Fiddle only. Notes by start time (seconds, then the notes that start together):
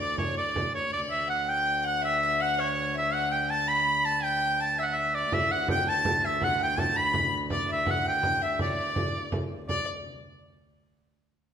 Already playing: D5
0.19 C#5
0.38 D5
0.74 C#5
0.92 D5
1.28 F#5
1.46 G5
1.84 F#5
2.02 E5
2.22 E5
2.40 F#5
2.58 C#5
2.95 E5
3.13 F#5
3.32 G5
3.50 A5
3.68 B5
4.05 A5
4.22 G5
4.60 A5
4.78 E5
4.90 E5
5.14 D5
5.33 E5
5.51 F#5
5.70 G5
5.87 A5
6.24 E5
6.42 F#5
6.60 G5
6.79 A5
6.96 B5
7.51 D5
7.69 E5
7.86 F#5
8.06 G5
8.42 E5
8.61 D5
8.67 C#5
8.74 D5
9.70 D5